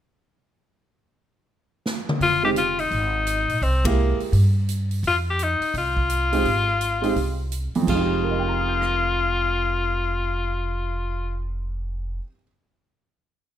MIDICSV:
0, 0, Header, 1, 6, 480
1, 0, Start_track
1, 0, Key_signature, -4, "minor"
1, 0, Tempo, 354610
1, 1082, Time_signature, 4, 2, 24, 8
1, 18381, End_track
2, 0, Start_track
2, 0, Title_t, "Tenor saxophone"
2, 0, Program_c, 0, 66
2, 3012, Note_on_c, 0, 65, 102
2, 3288, Note_off_c, 0, 65, 0
2, 3310, Note_on_c, 0, 67, 91
2, 3385, Note_off_c, 0, 67, 0
2, 3486, Note_on_c, 0, 65, 88
2, 3786, Note_on_c, 0, 63, 90
2, 3806, Note_off_c, 0, 65, 0
2, 4914, Note_on_c, 0, 60, 86
2, 4934, Note_off_c, 0, 63, 0
2, 5223, Note_on_c, 0, 58, 74
2, 5244, Note_off_c, 0, 60, 0
2, 5695, Note_off_c, 0, 58, 0
2, 6864, Note_on_c, 0, 65, 93
2, 6991, Note_off_c, 0, 65, 0
2, 7174, Note_on_c, 0, 67, 93
2, 7353, Note_on_c, 0, 63, 86
2, 7373, Note_off_c, 0, 67, 0
2, 7804, Note_off_c, 0, 63, 0
2, 7820, Note_on_c, 0, 65, 92
2, 10146, Note_off_c, 0, 65, 0
2, 10687, Note_on_c, 0, 65, 88
2, 15557, Note_off_c, 0, 65, 0
2, 18381, End_track
3, 0, Start_track
3, 0, Title_t, "Upright piano"
3, 0, Program_c, 1, 0
3, 3287, Note_on_c, 1, 56, 68
3, 3298, Note_on_c, 1, 60, 62
3, 3304, Note_on_c, 1, 63, 65
3, 3312, Note_on_c, 1, 67, 77
3, 3449, Note_off_c, 1, 56, 0
3, 3455, Note_off_c, 1, 60, 0
3, 3457, Note_off_c, 1, 63, 0
3, 3462, Note_off_c, 1, 67, 0
3, 5205, Note_on_c, 1, 56, 64
3, 5211, Note_on_c, 1, 58, 59
3, 5218, Note_on_c, 1, 64, 58
3, 5228, Note_on_c, 1, 67, 69
3, 5824, Note_off_c, 1, 56, 0
3, 5827, Note_off_c, 1, 58, 0
3, 5830, Note_off_c, 1, 64, 0
3, 5836, Note_off_c, 1, 67, 0
3, 8557, Note_on_c, 1, 56, 66
3, 8564, Note_on_c, 1, 60, 65
3, 8569, Note_on_c, 1, 63, 64
3, 8579, Note_on_c, 1, 67, 78
3, 8716, Note_off_c, 1, 56, 0
3, 8719, Note_off_c, 1, 60, 0
3, 8721, Note_off_c, 1, 63, 0
3, 8726, Note_off_c, 1, 67, 0
3, 9496, Note_on_c, 1, 56, 65
3, 9508, Note_on_c, 1, 60, 65
3, 9521, Note_on_c, 1, 63, 67
3, 9526, Note_on_c, 1, 67, 76
3, 9666, Note_off_c, 1, 56, 0
3, 9671, Note_off_c, 1, 60, 0
3, 9678, Note_off_c, 1, 63, 0
3, 9681, Note_off_c, 1, 67, 0
3, 10499, Note_on_c, 1, 41, 64
3, 10589, Note_on_c, 1, 53, 56
3, 10668, Note_on_c, 1, 56, 58
3, 10752, Note_on_c, 1, 63, 58
3, 10835, Note_on_c, 1, 67, 67
3, 11145, Note_on_c, 1, 70, 40
3, 11246, Note_on_c, 1, 75, 41
3, 11359, Note_on_c, 1, 79, 41
3, 11478, Note_on_c, 1, 82, 39
3, 11615, Note_on_c, 1, 87, 38
3, 11922, Note_on_c, 1, 94, 32
3, 16464, Note_off_c, 1, 41, 0
3, 16492, Note_off_c, 1, 70, 0
3, 16509, Note_off_c, 1, 53, 0
3, 16543, Note_off_c, 1, 75, 0
3, 16549, Note_off_c, 1, 56, 0
3, 16590, Note_off_c, 1, 63, 0
3, 16599, Note_off_c, 1, 79, 0
3, 16632, Note_off_c, 1, 67, 0
3, 16659, Note_off_c, 1, 82, 0
3, 16727, Note_off_c, 1, 87, 0
3, 16881, Note_off_c, 1, 94, 0
3, 18381, End_track
4, 0, Start_track
4, 0, Title_t, "Upright bass"
4, 0, Program_c, 2, 32
4, 2984, Note_on_c, 2, 29, 78
4, 3897, Note_off_c, 2, 29, 0
4, 3936, Note_on_c, 2, 32, 85
4, 4672, Note_off_c, 2, 32, 0
4, 4709, Note_on_c, 2, 34, 66
4, 4881, Note_off_c, 2, 34, 0
4, 4893, Note_on_c, 2, 36, 86
4, 5628, Note_off_c, 2, 36, 0
4, 5852, Note_on_c, 2, 43, 90
4, 6765, Note_off_c, 2, 43, 0
4, 6808, Note_on_c, 2, 41, 87
4, 7544, Note_off_c, 2, 41, 0
4, 7768, Note_on_c, 2, 36, 89
4, 8683, Note_off_c, 2, 36, 0
4, 8725, Note_on_c, 2, 32, 81
4, 9643, Note_off_c, 2, 32, 0
4, 9688, Note_on_c, 2, 36, 87
4, 10427, Note_off_c, 2, 36, 0
4, 10652, Note_on_c, 2, 29, 86
4, 16487, Note_off_c, 2, 29, 0
4, 18381, End_track
5, 0, Start_track
5, 0, Title_t, "Muted upright bass strokes"
5, 5672, Note_on_c, 9, 29, 37
5, 5808, Note_off_c, 9, 29, 0
5, 7587, Note_on_c, 9, 29, 37
5, 7722, Note_off_c, 9, 29, 0
5, 10472, Note_on_c, 9, 29, 37
5, 10607, Note_off_c, 9, 29, 0
5, 18381, End_track
6, 0, Start_track
6, 0, Title_t, "Drums"
6, 2514, Note_on_c, 9, 38, 67
6, 2650, Note_off_c, 9, 38, 0
6, 2829, Note_on_c, 9, 47, 86
6, 2965, Note_off_c, 9, 47, 0
6, 2987, Note_on_c, 9, 36, 31
6, 2990, Note_on_c, 9, 46, 44
6, 3122, Note_off_c, 9, 36, 0
6, 3125, Note_off_c, 9, 46, 0
6, 3466, Note_on_c, 9, 42, 47
6, 3602, Note_off_c, 9, 42, 0
6, 3772, Note_on_c, 9, 46, 37
6, 3907, Note_off_c, 9, 46, 0
6, 3943, Note_on_c, 9, 36, 31
6, 3943, Note_on_c, 9, 46, 38
6, 4078, Note_off_c, 9, 36, 0
6, 4079, Note_off_c, 9, 46, 0
6, 4420, Note_on_c, 9, 42, 54
6, 4556, Note_off_c, 9, 42, 0
6, 4730, Note_on_c, 9, 46, 37
6, 4865, Note_off_c, 9, 46, 0
6, 4901, Note_on_c, 9, 36, 32
6, 4904, Note_on_c, 9, 46, 43
6, 5036, Note_off_c, 9, 36, 0
6, 5039, Note_off_c, 9, 46, 0
6, 5207, Note_on_c, 9, 36, 75
6, 5211, Note_on_c, 9, 51, 67
6, 5342, Note_off_c, 9, 36, 0
6, 5347, Note_off_c, 9, 51, 0
6, 5688, Note_on_c, 9, 46, 35
6, 5823, Note_off_c, 9, 46, 0
6, 5858, Note_on_c, 9, 36, 31
6, 5859, Note_on_c, 9, 46, 43
6, 5993, Note_off_c, 9, 36, 0
6, 5995, Note_off_c, 9, 46, 0
6, 6342, Note_on_c, 9, 42, 51
6, 6477, Note_off_c, 9, 42, 0
6, 6643, Note_on_c, 9, 46, 37
6, 6778, Note_off_c, 9, 46, 0
6, 6815, Note_on_c, 9, 36, 32
6, 6819, Note_on_c, 9, 46, 45
6, 6950, Note_off_c, 9, 36, 0
6, 6955, Note_off_c, 9, 46, 0
6, 7296, Note_on_c, 9, 42, 47
6, 7431, Note_off_c, 9, 42, 0
6, 7601, Note_on_c, 9, 46, 38
6, 7737, Note_off_c, 9, 46, 0
6, 7770, Note_on_c, 9, 36, 32
6, 7775, Note_on_c, 9, 46, 42
6, 7905, Note_off_c, 9, 36, 0
6, 7910, Note_off_c, 9, 46, 0
6, 8076, Note_on_c, 9, 36, 53
6, 8211, Note_off_c, 9, 36, 0
6, 8251, Note_on_c, 9, 42, 54
6, 8386, Note_off_c, 9, 42, 0
6, 8561, Note_on_c, 9, 46, 39
6, 8696, Note_off_c, 9, 46, 0
6, 8729, Note_on_c, 9, 36, 34
6, 8734, Note_on_c, 9, 46, 45
6, 8864, Note_off_c, 9, 36, 0
6, 8869, Note_off_c, 9, 46, 0
6, 9214, Note_on_c, 9, 42, 49
6, 9350, Note_off_c, 9, 42, 0
6, 9522, Note_on_c, 9, 46, 38
6, 9657, Note_off_c, 9, 46, 0
6, 9691, Note_on_c, 9, 36, 32
6, 9695, Note_on_c, 9, 46, 40
6, 9827, Note_off_c, 9, 36, 0
6, 9830, Note_off_c, 9, 46, 0
6, 10174, Note_on_c, 9, 42, 51
6, 10310, Note_off_c, 9, 42, 0
6, 10489, Note_on_c, 9, 46, 37
6, 10624, Note_off_c, 9, 46, 0
6, 10659, Note_on_c, 9, 36, 55
6, 10664, Note_on_c, 9, 49, 63
6, 10794, Note_off_c, 9, 36, 0
6, 10800, Note_off_c, 9, 49, 0
6, 11936, Note_on_c, 9, 37, 55
6, 12072, Note_off_c, 9, 37, 0
6, 18381, End_track
0, 0, End_of_file